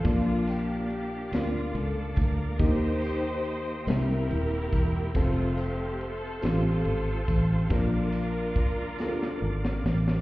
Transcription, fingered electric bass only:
X:1
M:6/8
L:1/8
Q:3/8=47
K:Bb
V:1 name="Fingered electric bass" clef=bass
B,,,3 D,, _D,, =D,, | E,,3 C,, E,,, =E,,, | F,,,3 A,,, _A,,, =A,,, | B,,,3 D,, _A,,, =A,,, |]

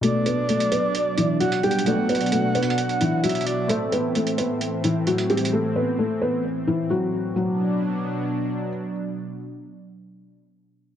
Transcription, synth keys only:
X:1
M:4/4
L:1/8
Q:1/4=131
K:Bphr
V:1 name="Synth keys"
[B,,B,Fd]8 | [B,,B,Fd]8 | [A,Ace]8 | z8 |
z8 | z8 |]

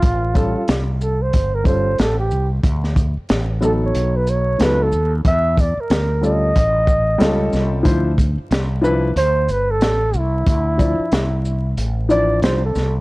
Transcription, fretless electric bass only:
X:1
M:4/4
L:1/16
Q:"Swing 16ths" 1/4=92
K:Ddor
V:1 name="Fretless electric bass" clef=bass
A,,,3 z ^B,,,4 G,,,4 A,,,2 B,,,2 | D,,3 z A,,,4 B,,,4 ^C,,2 ^D,,2 | E,,3 z D,,4 A,,,4 ^C,,2 ^B,,,2 | D,,3 z C,,4 D,,2 G,,,2 A,,,2 C,,2 |
D,,3 z C,,4 A,,,4 C,,2 C,,2 |]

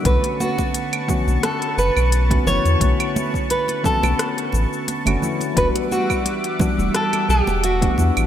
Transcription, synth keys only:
X:1
M:4/4
L:1/16
Q:"Swing 16ths" 1/4=87
K:Edor
V:1 name="Synth keys"
[D,A,B,CF]6 [D,A,B,CF]4 z3 [D,A,B,CF] [D,A,B,CE]2 | [D,A,B,CF]6 [D,A,B,CF]4 z3 [D,A,B,CF] [D,A,B,CE]2 | [E,G,B,DF]6 [E,G,B,DF]4 z3 [E,G,B,DF] [E,G,B,DE]2 |]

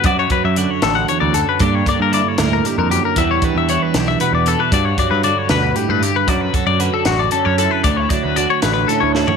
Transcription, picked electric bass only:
X:1
M:6/8
L:1/16
Q:3/8=77
K:D
V:1 name="Picked electric bass" clef=bass
F,,2 z F,,2 z A,,,2 z D,,2 z | G,,2 z G,,2 z D,,2 z =F,,2 z | E,,2 z E,,2 z B,,,2 z E,,2 z | G,,2 z G,,2 z D,,2 z G,,2 z |
F,,2 z F,,2 z A,,,2 z F,,2 z | D,,2 z D,,2 z A,,,2 z D,,2 z |]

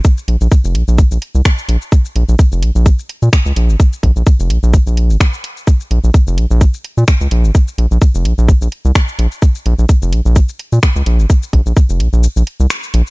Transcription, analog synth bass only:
X:1
M:4/4
L:1/16
Q:"Swing 16ths" 1/4=128
K:Bbm
V:1 name="Analog synth bass" clef=bass
z2 B,,, B,,, z F,,, B,,, B,,, z B,,, z C,, z2 B,,, z | z2 B,,, B,,, z F,,, B,,, B,,, z3 B,, z D,, B,,, A,,, | z2 B,,, B,,, z F,,, B,,, B,,, z B,,,2 A,,, z4 | z2 B,,, B,,, z F,,, B,,, B,,, z3 B,, z D,, B,,, A,,, |
z2 B,,, B,,, z F,,, B,,, B,,, z B,,, z C,, z2 B,,, z | z2 B,,, B,,, z F,,, B,,, B,,, z3 B,, z D,, B,,, A,,, | z2 B,,, B,,, z F,,, B,,, B,,, z B,,, z C,, z2 B,,, z |]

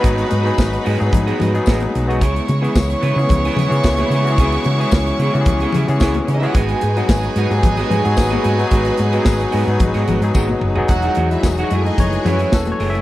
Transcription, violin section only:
X:1
M:4/4
L:1/16
Q:1/4=110
K:G#phr
V:1 name="Violin section"
[Bb]12- [Bb]2 z2 | [cc']16- | [cc']12- [cc']3/2 z/2 [Cc]/2 [Dd]/2 [Ee]/2 [Ff]/2 | [Gg]16- |
[Gg]12- [Gg]2 z2 | [Ff]2 z [Ee] z [Ff] z [Dd]3 [Cc]2 z4 |]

